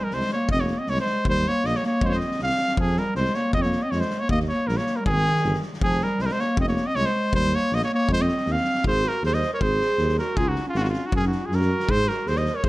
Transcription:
0.04 clarinet G3, trumpet A#4
0.11 tuba C2, clarinet G#3, trumpet C5, snare
0.21 snare
0.29 trumpet C#5, snare
0.35 clarinet A#3
0.49 tuba F1, clarinet C4, trumpet D#5, kick
0.58 clarinet A#3, trumpet C#5, snare
0.67 snare
0.78 clarinet C4, trumpet D#5
0.87 tuba C2, clarinet G#3, trumpet C#5, snare
0.97 clarinet G#3, trumpet C5, snare
1.06 snare
1.25 tuba D#2, clarinet G3, trumpet C5, kick
1.35 snare
1.45 clarinet A#3, trumpet C#5, snare
1.64 tuba A#1, clarinet A#3, trumpet D#5, snare
1.74 clarinet A#3, trumpet C#5, snare
1.83 clarinet A#3, trumpet C#5, snare
2.01 tuba F2, clarinet G#3 A#3, trumpet C5, kick
2.07 clarinet G#3, trumpet C5 C#5
2.11 clarinet C4, trumpet D#5, snare
2.20 snare
2.31 snare
2.39 tuba C2, clarinet C4, trumpet F5, snare
2.50 snare
2.58 snare
2.68 snare
2.77 tuba F2, clarinet F3, trumpet G#4, kick
2.87 snare
2.97 clarinet G3, trumpet A#4, snare
3.15 tuba C2, clarinet G#3, trumpet C5, snare
3.25 snare
3.34 clarinet A#3, trumpet C#5, snare
3.53 tuba F2, clarinet C4, trumpet D#5, kick
3.62 clarinet A#3, trumpet C#5, snare
3.72 snare
3.82 clarinet C4, trumpet D#5
3.91 tuba F2, clarinet G#3, trumpet C#5, snare
4.00 clarinet G#3, trumpet C5, snare
4.10 snare
4.19 clarinet A#3, trumpet C#5
4.29 tuba D#2, clarinet A#3, trumpet D#5, kick
4.40 snare
4.48 clarinet A#3, trumpet C#5, snare
4.67 tuba A#1, clarinet G3, trumpet A#4, snare
4.77 clarinet A#3, trumpet C#5, snare
4.87 snare
4.96 clarinet G3, trumpet A#4
5.06 tuba G#1, clarinet D#3, trumpet G#4, kick
5.16 snare
5.26 snare
5.36 snare
5.44 tuba G1, snare
5.54 snare
5.62 snare
5.73 snare
5.81 tuba F1, clarinet F3, trumpet G#4, kick
5.90 snare
6.01 clarinet G3, trumpet A#4, snare
6.19 tuba C2, clarinet G#3, trumpet C5, snare
6.25 clarinet G3, trumpet A#4, snare
6.30 clarinet G#3, trumpet C5
6.39 clarinet A#3, trumpet C#5, snare
6.57 tuba F1, clarinet C4, trumpet D#5, kick
6.67 clarinet A#3, trumpet C#5, snare
6.76 snare
6.86 clarinet C4, trumpet D#5
6.95 tuba C2, clarinet G#3, trumpet C#5, snare
7.06 clarinet G#3, trumpet C5
7.33 tuba D#2, clarinet G3, trumpet C5, kick
7.43 snare
7.52 clarinet A#3, trumpet C#5, snare
7.71 tuba A#1, clarinet A#3, trumpet D#5, snare
7.81 clarinet A#3, trumpet C#5, snare
7.93 clarinet A#3, trumpet C#5
8.08 tuba F2, clarinet G#3, kick
8.13 trumpet C5
8.19 clarinet C4, trumpet D#5, snare
8.28 snare
8.37 snare
8.46 tuba D#2, clarinet C4, snare
8.52 trumpet F5
8.57 snare
8.64 snare
8.74 snare
8.84 tuba G#1, clarinet G#4, trumpet C5, kick
9.04 clarinet F#4, snare
9.08 trumpet A#4
9.22 tuba D#2, clarinet G#4, trumpet C5, snare
9.33 clarinet C5, trumpet D#5, snare
9.42 snare
9.54 clarinet A#4, trumpet C#5
9.60 tuba G#1, clarinet G#4, trumpet C5, kick
9.81 snare
9.98 tuba D#2, snare
10.08 snare
10.18 clarinet F#4, trumpet A#4, snare
10.36 tuba C#2, clarinet F4, trumpet G#4, kick
10.48 clarinet D#4, trumpet F#4
10.55 snare
10.66 clarinet C#4, trumpet F4
10.74 tuba G#1, clarinet C#4, trumpet F#4, snare
10.80 clarinet D#4, trumpet F4
10.84 trumpet F#4, snare
10.88 clarinet C#4, trumpet F4
10.93 snare
11.06 clarinet D#4, trumpet F#4
11.12 tuba F#2, clarinet C#4, trumpet G#4, kick
11.21 clarinet D#4, snare
11.27 trumpet F#4
11.32 snare
11.43 clarinet F4, trumpet G#4
11.50 tuba F#2, clarinet F#4, snare
11.55 trumpet A#4
11.61 snare
11.80 snare
11.88 tuba G#2, clarinet G#4, trumpet C5, kick
12.07 clarinet F#4, trumpet A#4, snare
12.27 tuba D#2, clarinet G#4, trumpet C5, snare
12.36 clarinet C5, trumpet D#5, snare
12.46 snare
12.54 clarinet A#4, trumpet C#5
12.63 tuba G#2, clarinet G#4, trumpet C5, kick

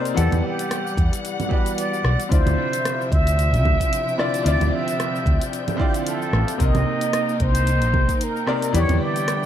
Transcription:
Already playing: grand piano C3 C4 D#4 A#4 D5 D#5, string section A#3 D#4, muted trumpet C5
0.05 closed hi-hat, cabasa
0.14 fingered electric bass E2, grand piano E3 B3 G4 F#5, string section G3 F#5, muted trumpet A4, closed hi-hat, cabasa
0.19 grand piano D5
0.32 fingered electric bass E2, closed hi-hat, low conga, cabasa
0.39 muted trumpet A4
0.44 muted trumpet G4
0.59 closed hi-hat, cabasa
0.71 cross-stick, closed hi-hat, cabasa
0.87 cabasa
0.97 fingered electric bass E2, kick, closed hi-hat
1.13 closed hi-hat, cabasa
1.25 closed hi-hat, cabasa
1.40 closed hi-hat, low conga, cabasa
1.49 grand piano E3 B3 F#4 G4 D5, muted trumpet B4, kick
1.66 closed hi-hat, cabasa
1.78 muted trumpet D5, closed hi-hat, cabasa
1.94 cabasa
2.04 fingered electric bass B1, cross-stick
2.20 closed hi-hat, cabasa
2.29 fingered electric bass D2, string section C3 F3 E5, grand piano D3 C4 E4 F4, muted trumpet C5, synth texture G5 G6, kick, closed hi-hat, cabasa
2.33 grand piano D5
2.46 fingered electric bass D2, closed hi-hat, low conga, cabasa
2.73 closed hi-hat, cabasa
2.85 cross-stick, closed hi-hat, cabasa
3.01 cabasa
3.12 fingered electric bass D2, muted trumpet E5, kick, closed hi-hat
3.27 closed hi-hat, cabasa
3.39 closed hi-hat, cabasa
3.53 fingered electric bass C2, closed hi-hat, cabasa
3.65 fingered electric bass D2, kick, low conga
3.80 kick, closed hi-hat, cabasa
3.93 closed hi-hat, cabasa
4.09 cabasa
4.18 grand piano D3 C4 E4 F4 D5, muted trumpet D5, cross-stick
4.34 closed hi-hat, cabasa
4.44 fingered electric bass D2, grand piano D3 C4 E4 F4 D5, muted trumpet D5, closed hi-hat, cabasa
4.60 fingered electric bass D2, closed hi-hat, low conga, cabasa
4.73 muted trumpet E5
4.88 closed hi-hat, cabasa
5.00 cross-stick, closed hi-hat, cabasa
5.16 cabasa
5.26 fingered electric bass D2, kick, closed hi-hat
5.42 closed hi-hat, cabasa
5.53 closed hi-hat, cabasa
5.68 closed hi-hat, low conga, cabasa
5.77 grand piano D3 C4 E4 F4 D5, kick
5.81 muted trumpet G4
5.94 closed hi-hat, cabasa
6.07 muted trumpet A4, closed hi-hat, cabasa
6.22 cabasa
6.33 fingered electric bass A1, cross-stick
6.48 closed hi-hat, cabasa
6.58 fingered electric bass C2, grand piano C3 C4 D#4 A#4 D#5, string section A#3 D#4, muted trumpet D#5, kick, closed hi-hat, cabasa
6.75 fingered electric bass C2, closed hi-hat, low conga, cabasa
7.01 closed hi-hat, cabasa
7.13 cross-stick, closed hi-hat, cabasa
7.29 cabasa
7.40 fingered electric bass C2, muted trumpet C5, kick, closed hi-hat
7.55 closed hi-hat, cabasa
7.67 closed hi-hat, cabasa
7.82 fingered electric bass A#1, closed hi-hat, cabasa
7.94 fingered electric bass C2, kick, low conga
8.09 kick, closed hi-hat, cabasa
8.21 muted trumpet A#4, closed hi-hat, cabasa
8.36 cabasa
8.46 grand piano C3 C4 D#4 A#4 D5, cross-stick
8.62 closed hi-hat, cabasa
8.73 fingered electric bass E2, string section D3 G3 G5, grand piano E3 B3 E4 G4 D5, muted trumpet C#5, closed hi-hat, cabasa
8.89 fingered electric bass E2, closed hi-hat, low conga, cabasa
9.03 muted trumpet D5
9.16 closed hi-hat, cabasa
9.28 cross-stick, closed hi-hat, cabasa

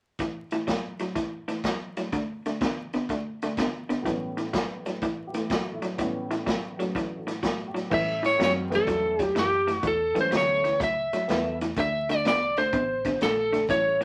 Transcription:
0.19 clean electric guitar A2 E3, kick, snare, closed hi-hat
0.51 clean electric guitar A2 E3, snare, closed hi-hat
0.67 clean electric guitar A2 F#3, kick, snare, closed hi-hat
0.99 clean electric guitar A2 F#3, snare, closed hi-hat
1.15 clean electric guitar A2 E3, kick, snare, closed hi-hat
1.48 clean electric guitar A2 E3, snare, closed hi-hat
1.64 clean electric guitar A2 F#3, kick, snare, closed hi-hat
1.97 clean electric guitar A2 F#3, snare, closed hi-hat
2.12 clean electric guitar D3 A3, kick, snare, closed hi-hat
2.46 clean electric guitar D3 A3, snare, closed hi-hat
2.61 clean electric guitar D3 B3, kick, snare, closed hi-hat
2.93 clean electric guitar D3 B3, snare, closed hi-hat
3.09 clean electric guitar D3 A3, kick, snare, closed hi-hat
3.42 clean electric guitar D3 A3, snare, closed hi-hat
3.57 clean electric guitar D3 B3, kick, snare, closed hi-hat
3.89 clean electric guitar D3 B3, snare, closed hi-hat
4.02 honky-tonk piano A2 E3 G3, clean electric guitar A2 E3, kick, closed hi-hat
4.07 honky-tonk piano B3 C#4, snare
4.37 clean electric guitar A2 E3, snare, closed hi-hat
4.53 clean electric guitar A2 F#3, kick, snare, closed hi-hat
4.86 clean electric guitar A2 F#3, snare, closed hi-hat
5.01 clean electric guitar A2 E3, kick, snare, closed hi-hat
5.27 honky-tonk piano G4
5.34 clean electric guitar A2 E3, honky-tonk piano E3 A3, snare, closed hi-hat
5.50 clean electric guitar A2 F#3, honky-tonk piano F#4, kick, snare, closed hi-hat
5.75 honky-tonk piano E4
5.82 clean electric guitar A2 F#3, snare, closed hi-hat
5.98 honky-tonk piano A2 E3 G3 B3 C#4, clean electric guitar A2 E3, kick, snare, closed hi-hat
6.31 clean electric guitar A2 E3, snare, closed hi-hat
6.46 clean electric guitar A2 F#3, kick, snare, closed hi-hat
6.77 clean electric guitar A2 F#3, honky-tonk piano F#3 A3 C#4, snare, closed hi-hat
6.95 clean electric guitar A2 E3, kick, snare, closed hi-hat
7.19 honky-tonk piano E4
7.27 clean electric guitar A2 E3, snare, closed hi-hat
7.42 clean electric guitar A2 F#3, honky-tonk piano F#4, kick, snare, closed hi-hat
7.68 honky-tonk piano G4
7.74 clean electric guitar A2 F#3, snare, closed hi-hat
7.90 fingered electric bass A2, clean electric guitar A2 E3, honky-tonk piano E3 G3 A3 C#4, lead electric guitar E5, kick, crash
8.23 clean electric guitar A2 E3, lead electric guitar C#5, snare, closed hi-hat
8.37 fingered electric bass F#2, clean electric guitar A2 F#3, honky-tonk piano D#3 F#3 G#3 C4, snare, closed hi-hat
8.44 lead electric guitar C#5
8.70 clean electric guitar A2 E3, honky-tonk piano E3 G3 A3 C#4, snare, closed hi-hat
8.75 lead electric guitar A4
8.87 fingered electric bass E2, clean electric guitar A2 F#3, kick, snare, closed hi-hat
9.19 clean electric guitar A2 F#3, kick, snare, closed hi-hat
9.23 lead electric guitar G4
9.35 fingered electric bass F#2, clean electric guitar A2 E3, lead electric guitar G4, snare, closed hi-hat
9.67 clean electric guitar A2 E3, snare, closed hi-hat
9.75 lead electric guitar F#4
9.83 fingered electric bass E2, clean electric guitar A2 E3, kick, closed hi-hat
9.87 lead electric guitar A4
10.14 clean electric guitar A2 E3, honky-tonk piano E3 G3 A3 C#4, muted fingered electric bass stroke, snare, closed hi-hat
10.21 lead electric guitar C5
10.31 fingered electric bass D2, clean electric guitar A2 F#3, snare, closed hi-hat
10.37 lead electric guitar C#5
10.64 clean electric guitar A2 E3, snare, closed hi-hat
10.80 fingered electric bass C#2, clean electric guitar A2 F#3, lead electric guitar E5, kick, snare, closed hi-hat
11.13 clean electric guitar A2 F#3, muted fingered electric bass stroke, snare, closed hi-hat
11.28 fingered electric bass E2, clean electric guitar A2 E3, honky-tonk piano E3 G3 A3 B3, snare, closed hi-hat
11.61 clean electric guitar A2 E3, snare, closed hi-hat
11.76 fingered electric bass D2, clean electric guitar D3 A3, lead electric guitar E5, kick, snare, closed hi-hat
12.09 clean electric guitar D3 A3, lead electric guitar D5, snare, closed hi-hat
12.25 fingered electric bass C2, clean electric guitar D3 B3, lead electric guitar D5, snare, closed hi-hat
12.57 clean electric guitar D3 A3, lead electric guitar C5, snare, closed hi-hat
12.73 fingered electric bass A1, clean electric guitar D3 B3, kick, closed hi-hat
13.05 clean electric guitar D3 B3, kick, snare, closed hi-hat
13.21 fingered electric bass A#1, clean electric guitar D3 A3, lead electric guitar A4, snare, closed hi-hat
13.52 clean electric guitar D3 A3, snare, closed hi-hat
13.68 fingered electric bass A1, clean electric guitar A2 E3, honky-tonk piano G3 A3 C#4 E4, lead electric guitar C#5, kick, snare, closed hi-hat
14.01 clean electric guitar A2

